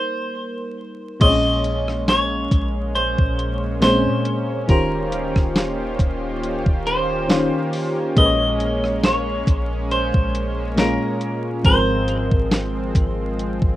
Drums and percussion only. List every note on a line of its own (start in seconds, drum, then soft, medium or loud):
1.21 kick loud
1.21 closed hi-hat medium
1.21 crash medium
1.64 closed hi-hat medium
1.88 cross-stick medium
2.08 snare loud
2.08 closed hi-hat medium
2.51 kick loud
2.51 closed hi-hat medium
2.96 closed hi-hat medium
3.18 kick medium
3.39 closed hi-hat medium
3.82 snare loud
3.82 closed hi-hat medium
4.25 closed hi-hat medium
4.69 kick loud
4.69 closed hi-hat medium
5.12 closed hi-hat medium
5.36 kick medium
5.36 cross-stick medium
5.56 snare loud
5.56 closed hi-hat medium
5.99 kick medium
5.99 closed hi-hat medium
6.44 closed hi-hat medium
6.66 kick medium
6.87 closed hi-hat medium
7.30 snare loud
7.30 closed hi-hat medium
7.73 open hi-hat medium
8.17 kick loud
8.17 closed hi-hat medium
8.60 closed hi-hat medium
8.84 cross-stick medium
9.03 snare loud
9.03 closed hi-hat medium
9.47 kick loud
9.47 closed hi-hat medium
9.91 closed hi-hat medium
10.14 kick medium
10.35 closed hi-hat medium
10.78 snare loud
10.78 closed hi-hat medium
11.21 closed hi-hat medium
11.65 kick loud
11.65 closed hi-hat medium
12.08 closed hi-hat medium
12.31 kick medium
12.51 snare loud
12.51 closed hi-hat medium
12.95 kick medium
12.95 closed hi-hat medium
13.39 closed hi-hat medium
13.62 kick medium